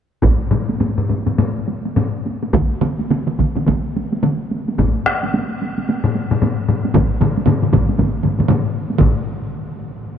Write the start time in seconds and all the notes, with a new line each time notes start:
0.22 taiko, taiko low-mid, taiko high
0.51 taiko low-mid, taiko high
0.69 taiko high
0.80 taiko low-mid, taiko high
0.98 taiko low-mid
1.10 taiko low-mid, taiko high
1.27 taiko low-mid, taiko high
1.39 taiko low-mid, taiko high
1.68 taiko high
1.85 taiko high
1.96 taiko low-mid, taiko high
2.26 taiko high
2.43 taiko high
2.53 taiko, taiko mid, taiko high
2.82 taiko mid, taiko high
2.99 taiko high
3.10 taiko mid, taiko high
3.27 taiko mid
3.39 taiko, taiko mid, taiko high
3.55 taiko mid, taiko high
3.66 taiko, taiko mid, taiko high
3.96 taiko high
4.12 taiko high
4.23 taiko mid, taiko high
4.51 taiko high
4.68 taiko high
4.78 taiko, taiko low-mid, taiko high
5.06 taiko rim, taiko high
5.23 taiko high
5.34 taiko high
5.62 taiko high
5.78 taiko high
5.89 taiko high
6.04 taiko low-mid
6.16 taiko high
6.31 taiko low-mid, taiko high
6.42 taiko low-mid, taiko high
6.68 taiko low-mid, taiko high
6.85 taiko high
6.95 taiko, taiko low-mid, taiko mid, taiko high
7.21 taiko low-mid, taiko mid, taiko high
7.37 taiko high
7.46 taiko low-mid, taiko mid, taiko high
7.62 taiko low-mid, taiko mid
7.73 taiko, taiko low-mid, taiko mid, taiko high
7.89 taiko high
7.98 taiko, taiko low-mid, taiko mid, taiko high
8.24 taiko low-mid, taiko mid, taiko high
8.39 taiko low-mid, taiko mid, taiko high
8.49 taiko low-mid, taiko mid, taiko high
8.90 taiko high
8.99 taiko, taiko low-mid, taiko mid, taiko high